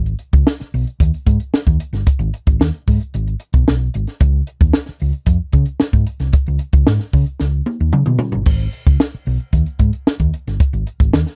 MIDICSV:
0, 0, Header, 1, 4, 480
1, 0, Start_track
1, 0, Tempo, 533333
1, 1861, Time_signature, 4, 2, 24, 8
1, 10220, End_track
2, 0, Start_track
2, 0, Title_t, "Fingered electric bass"
2, 0, Program_c, 0, 33
2, 0, Note_on_c, 0, 32, 99
2, 114, Note_off_c, 0, 32, 0
2, 303, Note_on_c, 0, 37, 92
2, 389, Note_off_c, 0, 37, 0
2, 665, Note_on_c, 0, 35, 87
2, 751, Note_off_c, 0, 35, 0
2, 903, Note_on_c, 0, 39, 91
2, 990, Note_off_c, 0, 39, 0
2, 1143, Note_on_c, 0, 44, 97
2, 1229, Note_off_c, 0, 44, 0
2, 1504, Note_on_c, 0, 39, 91
2, 1590, Note_off_c, 0, 39, 0
2, 1735, Note_on_c, 0, 31, 83
2, 1825, Note_off_c, 0, 31, 0
2, 1972, Note_on_c, 0, 32, 100
2, 2063, Note_off_c, 0, 32, 0
2, 2228, Note_on_c, 0, 32, 89
2, 2313, Note_off_c, 0, 32, 0
2, 2336, Note_on_c, 0, 39, 84
2, 2425, Note_off_c, 0, 39, 0
2, 2591, Note_on_c, 0, 44, 92
2, 2675, Note_off_c, 0, 44, 0
2, 2830, Note_on_c, 0, 32, 94
2, 3002, Note_off_c, 0, 32, 0
2, 3185, Note_on_c, 0, 35, 95
2, 3272, Note_off_c, 0, 35, 0
2, 3319, Note_on_c, 0, 35, 89
2, 3488, Note_off_c, 0, 35, 0
2, 3555, Note_on_c, 0, 32, 89
2, 3638, Note_off_c, 0, 32, 0
2, 3793, Note_on_c, 0, 37, 104
2, 3964, Note_off_c, 0, 37, 0
2, 4151, Note_on_c, 0, 39, 86
2, 4235, Note_off_c, 0, 39, 0
2, 4514, Note_on_c, 0, 37, 86
2, 4598, Note_off_c, 0, 37, 0
2, 4741, Note_on_c, 0, 41, 98
2, 4829, Note_off_c, 0, 41, 0
2, 4982, Note_on_c, 0, 49, 92
2, 5069, Note_off_c, 0, 49, 0
2, 5342, Note_on_c, 0, 44, 97
2, 5429, Note_off_c, 0, 44, 0
2, 5579, Note_on_c, 0, 36, 86
2, 5667, Note_off_c, 0, 36, 0
2, 5829, Note_on_c, 0, 37, 94
2, 5914, Note_off_c, 0, 37, 0
2, 6063, Note_on_c, 0, 37, 84
2, 6150, Note_off_c, 0, 37, 0
2, 6192, Note_on_c, 0, 44, 102
2, 6276, Note_off_c, 0, 44, 0
2, 6423, Note_on_c, 0, 49, 92
2, 6510, Note_off_c, 0, 49, 0
2, 6667, Note_on_c, 0, 37, 80
2, 6840, Note_off_c, 0, 37, 0
2, 7024, Note_on_c, 0, 39, 97
2, 7111, Note_off_c, 0, 39, 0
2, 7137, Note_on_c, 0, 49, 99
2, 7226, Note_off_c, 0, 49, 0
2, 7263, Note_on_c, 0, 47, 85
2, 7350, Note_off_c, 0, 47, 0
2, 7514, Note_on_c, 0, 31, 77
2, 7597, Note_off_c, 0, 31, 0
2, 7621, Note_on_c, 0, 32, 104
2, 7796, Note_off_c, 0, 32, 0
2, 7981, Note_on_c, 0, 37, 78
2, 8069, Note_off_c, 0, 37, 0
2, 8341, Note_on_c, 0, 35, 83
2, 8429, Note_off_c, 0, 35, 0
2, 8577, Note_on_c, 0, 39, 82
2, 8666, Note_off_c, 0, 39, 0
2, 8818, Note_on_c, 0, 44, 83
2, 8907, Note_off_c, 0, 44, 0
2, 9178, Note_on_c, 0, 39, 87
2, 9266, Note_off_c, 0, 39, 0
2, 9427, Note_on_c, 0, 31, 89
2, 9512, Note_off_c, 0, 31, 0
2, 9659, Note_on_c, 0, 32, 96
2, 9747, Note_off_c, 0, 32, 0
2, 9902, Note_on_c, 0, 32, 85
2, 9990, Note_off_c, 0, 32, 0
2, 10019, Note_on_c, 0, 39, 87
2, 10107, Note_off_c, 0, 39, 0
2, 10220, End_track
3, 0, Start_track
3, 0, Title_t, "Muted fingered electric bass strokes"
3, 551, Note_on_c, 9, 29, 40
3, 641, Note_off_c, 9, 29, 0
3, 1381, Note_on_c, 9, 29, 46
3, 1471, Note_off_c, 9, 29, 0
3, 4399, Note_on_c, 9, 29, 42
3, 4489, Note_off_c, 9, 29, 0
3, 5231, Note_on_c, 9, 29, 45
3, 5321, Note_off_c, 9, 29, 0
3, 8230, Note_on_c, 9, 29, 43
3, 8320, Note_off_c, 9, 29, 0
3, 9061, Note_on_c, 9, 29, 41
3, 9151, Note_off_c, 9, 29, 0
3, 10220, End_track
4, 0, Start_track
4, 0, Title_t, "Drums"
4, 55, Note_on_c, 9, 42, 41
4, 145, Note_off_c, 9, 42, 0
4, 169, Note_on_c, 9, 42, 67
4, 259, Note_off_c, 9, 42, 0
4, 296, Note_on_c, 9, 42, 54
4, 299, Note_on_c, 9, 36, 105
4, 386, Note_off_c, 9, 42, 0
4, 389, Note_off_c, 9, 36, 0
4, 420, Note_on_c, 9, 38, 108
4, 510, Note_off_c, 9, 38, 0
4, 541, Note_on_c, 9, 38, 37
4, 543, Note_on_c, 9, 42, 39
4, 631, Note_off_c, 9, 38, 0
4, 633, Note_off_c, 9, 42, 0
4, 664, Note_on_c, 9, 46, 57
4, 754, Note_off_c, 9, 46, 0
4, 786, Note_on_c, 9, 42, 36
4, 876, Note_off_c, 9, 42, 0
4, 901, Note_on_c, 9, 36, 97
4, 905, Note_on_c, 9, 42, 93
4, 991, Note_off_c, 9, 36, 0
4, 995, Note_off_c, 9, 42, 0
4, 1027, Note_on_c, 9, 42, 41
4, 1117, Note_off_c, 9, 42, 0
4, 1138, Note_on_c, 9, 42, 78
4, 1139, Note_on_c, 9, 36, 96
4, 1228, Note_off_c, 9, 42, 0
4, 1229, Note_off_c, 9, 36, 0
4, 1259, Note_on_c, 9, 42, 50
4, 1349, Note_off_c, 9, 42, 0
4, 1383, Note_on_c, 9, 38, 94
4, 1473, Note_off_c, 9, 38, 0
4, 1500, Note_on_c, 9, 36, 90
4, 1500, Note_on_c, 9, 42, 35
4, 1590, Note_off_c, 9, 36, 0
4, 1590, Note_off_c, 9, 42, 0
4, 1621, Note_on_c, 9, 42, 86
4, 1711, Note_off_c, 9, 42, 0
4, 1744, Note_on_c, 9, 42, 46
4, 1747, Note_on_c, 9, 38, 31
4, 1834, Note_off_c, 9, 42, 0
4, 1837, Note_off_c, 9, 38, 0
4, 1860, Note_on_c, 9, 42, 100
4, 1862, Note_on_c, 9, 36, 113
4, 1950, Note_off_c, 9, 42, 0
4, 1952, Note_off_c, 9, 36, 0
4, 1982, Note_on_c, 9, 42, 36
4, 2072, Note_off_c, 9, 42, 0
4, 2103, Note_on_c, 9, 42, 70
4, 2193, Note_off_c, 9, 42, 0
4, 2221, Note_on_c, 9, 42, 58
4, 2224, Note_on_c, 9, 36, 106
4, 2311, Note_off_c, 9, 42, 0
4, 2314, Note_off_c, 9, 36, 0
4, 2348, Note_on_c, 9, 38, 114
4, 2438, Note_off_c, 9, 38, 0
4, 2468, Note_on_c, 9, 42, 37
4, 2558, Note_off_c, 9, 42, 0
4, 2586, Note_on_c, 9, 46, 67
4, 2589, Note_on_c, 9, 36, 85
4, 2676, Note_off_c, 9, 46, 0
4, 2679, Note_off_c, 9, 36, 0
4, 2709, Note_on_c, 9, 42, 36
4, 2799, Note_off_c, 9, 42, 0
4, 2826, Note_on_c, 9, 42, 85
4, 2916, Note_off_c, 9, 42, 0
4, 2947, Note_on_c, 9, 42, 43
4, 3037, Note_off_c, 9, 42, 0
4, 3058, Note_on_c, 9, 42, 72
4, 3148, Note_off_c, 9, 42, 0
4, 3177, Note_on_c, 9, 42, 46
4, 3185, Note_on_c, 9, 36, 87
4, 3267, Note_off_c, 9, 42, 0
4, 3275, Note_off_c, 9, 36, 0
4, 3310, Note_on_c, 9, 38, 102
4, 3400, Note_off_c, 9, 38, 0
4, 3547, Note_on_c, 9, 42, 83
4, 3637, Note_off_c, 9, 42, 0
4, 3665, Note_on_c, 9, 42, 40
4, 3668, Note_on_c, 9, 38, 31
4, 3755, Note_off_c, 9, 42, 0
4, 3758, Note_off_c, 9, 38, 0
4, 3783, Note_on_c, 9, 42, 96
4, 3787, Note_on_c, 9, 36, 127
4, 3873, Note_off_c, 9, 42, 0
4, 3877, Note_off_c, 9, 36, 0
4, 4024, Note_on_c, 9, 42, 72
4, 4114, Note_off_c, 9, 42, 0
4, 4146, Note_on_c, 9, 42, 58
4, 4147, Note_on_c, 9, 36, 110
4, 4236, Note_off_c, 9, 42, 0
4, 4237, Note_off_c, 9, 36, 0
4, 4261, Note_on_c, 9, 38, 127
4, 4351, Note_off_c, 9, 38, 0
4, 4376, Note_on_c, 9, 38, 37
4, 4379, Note_on_c, 9, 42, 37
4, 4466, Note_off_c, 9, 38, 0
4, 4469, Note_off_c, 9, 42, 0
4, 4496, Note_on_c, 9, 46, 59
4, 4586, Note_off_c, 9, 46, 0
4, 4616, Note_on_c, 9, 42, 38
4, 4706, Note_off_c, 9, 42, 0
4, 4735, Note_on_c, 9, 42, 103
4, 4740, Note_on_c, 9, 36, 87
4, 4825, Note_off_c, 9, 42, 0
4, 4830, Note_off_c, 9, 36, 0
4, 4973, Note_on_c, 9, 42, 71
4, 4980, Note_on_c, 9, 36, 96
4, 5063, Note_off_c, 9, 42, 0
4, 5070, Note_off_c, 9, 36, 0
4, 5091, Note_on_c, 9, 42, 51
4, 5181, Note_off_c, 9, 42, 0
4, 5217, Note_on_c, 9, 38, 95
4, 5307, Note_off_c, 9, 38, 0
4, 5338, Note_on_c, 9, 36, 92
4, 5338, Note_on_c, 9, 42, 33
4, 5428, Note_off_c, 9, 36, 0
4, 5428, Note_off_c, 9, 42, 0
4, 5459, Note_on_c, 9, 42, 77
4, 5549, Note_off_c, 9, 42, 0
4, 5577, Note_on_c, 9, 42, 48
4, 5580, Note_on_c, 9, 38, 30
4, 5667, Note_off_c, 9, 42, 0
4, 5670, Note_off_c, 9, 38, 0
4, 5694, Note_on_c, 9, 42, 98
4, 5701, Note_on_c, 9, 36, 126
4, 5784, Note_off_c, 9, 42, 0
4, 5791, Note_off_c, 9, 36, 0
4, 5819, Note_on_c, 9, 42, 35
4, 5909, Note_off_c, 9, 42, 0
4, 5931, Note_on_c, 9, 42, 74
4, 6021, Note_off_c, 9, 42, 0
4, 6055, Note_on_c, 9, 42, 58
4, 6059, Note_on_c, 9, 36, 113
4, 6145, Note_off_c, 9, 42, 0
4, 6149, Note_off_c, 9, 36, 0
4, 6179, Note_on_c, 9, 38, 114
4, 6269, Note_off_c, 9, 38, 0
4, 6297, Note_on_c, 9, 38, 38
4, 6387, Note_off_c, 9, 38, 0
4, 6413, Note_on_c, 9, 46, 59
4, 6420, Note_on_c, 9, 36, 92
4, 6503, Note_off_c, 9, 46, 0
4, 6510, Note_off_c, 9, 36, 0
4, 6538, Note_on_c, 9, 42, 32
4, 6628, Note_off_c, 9, 42, 0
4, 6656, Note_on_c, 9, 38, 59
4, 6746, Note_off_c, 9, 38, 0
4, 6896, Note_on_c, 9, 48, 69
4, 6986, Note_off_c, 9, 48, 0
4, 7134, Note_on_c, 9, 47, 68
4, 7224, Note_off_c, 9, 47, 0
4, 7252, Note_on_c, 9, 45, 70
4, 7342, Note_off_c, 9, 45, 0
4, 7368, Note_on_c, 9, 43, 107
4, 7458, Note_off_c, 9, 43, 0
4, 7488, Note_on_c, 9, 43, 82
4, 7578, Note_off_c, 9, 43, 0
4, 7610, Note_on_c, 9, 49, 88
4, 7617, Note_on_c, 9, 36, 125
4, 7700, Note_off_c, 9, 49, 0
4, 7707, Note_off_c, 9, 36, 0
4, 7739, Note_on_c, 9, 42, 36
4, 7829, Note_off_c, 9, 42, 0
4, 7856, Note_on_c, 9, 42, 65
4, 7946, Note_off_c, 9, 42, 0
4, 7979, Note_on_c, 9, 36, 120
4, 7979, Note_on_c, 9, 42, 56
4, 8069, Note_off_c, 9, 36, 0
4, 8069, Note_off_c, 9, 42, 0
4, 8100, Note_on_c, 9, 38, 109
4, 8190, Note_off_c, 9, 38, 0
4, 8334, Note_on_c, 9, 46, 59
4, 8424, Note_off_c, 9, 46, 0
4, 8461, Note_on_c, 9, 42, 34
4, 8551, Note_off_c, 9, 42, 0
4, 8575, Note_on_c, 9, 42, 93
4, 8576, Note_on_c, 9, 36, 85
4, 8665, Note_off_c, 9, 42, 0
4, 8666, Note_off_c, 9, 36, 0
4, 8697, Note_on_c, 9, 42, 42
4, 8787, Note_off_c, 9, 42, 0
4, 8811, Note_on_c, 9, 42, 71
4, 8816, Note_on_c, 9, 36, 88
4, 8901, Note_off_c, 9, 42, 0
4, 8906, Note_off_c, 9, 36, 0
4, 8937, Note_on_c, 9, 42, 52
4, 9027, Note_off_c, 9, 42, 0
4, 9063, Note_on_c, 9, 38, 105
4, 9153, Note_off_c, 9, 38, 0
4, 9178, Note_on_c, 9, 36, 84
4, 9182, Note_on_c, 9, 42, 32
4, 9268, Note_off_c, 9, 36, 0
4, 9272, Note_off_c, 9, 42, 0
4, 9304, Note_on_c, 9, 42, 77
4, 9394, Note_off_c, 9, 42, 0
4, 9428, Note_on_c, 9, 42, 46
4, 9431, Note_on_c, 9, 38, 32
4, 9518, Note_off_c, 9, 42, 0
4, 9521, Note_off_c, 9, 38, 0
4, 9541, Note_on_c, 9, 36, 126
4, 9542, Note_on_c, 9, 42, 93
4, 9631, Note_off_c, 9, 36, 0
4, 9632, Note_off_c, 9, 42, 0
4, 9666, Note_on_c, 9, 42, 37
4, 9756, Note_off_c, 9, 42, 0
4, 9781, Note_on_c, 9, 42, 73
4, 9871, Note_off_c, 9, 42, 0
4, 9900, Note_on_c, 9, 36, 110
4, 9901, Note_on_c, 9, 42, 57
4, 9990, Note_off_c, 9, 36, 0
4, 9991, Note_off_c, 9, 42, 0
4, 10021, Note_on_c, 9, 38, 111
4, 10111, Note_off_c, 9, 38, 0
4, 10138, Note_on_c, 9, 38, 38
4, 10141, Note_on_c, 9, 42, 38
4, 10220, Note_off_c, 9, 38, 0
4, 10220, Note_off_c, 9, 42, 0
4, 10220, End_track
0, 0, End_of_file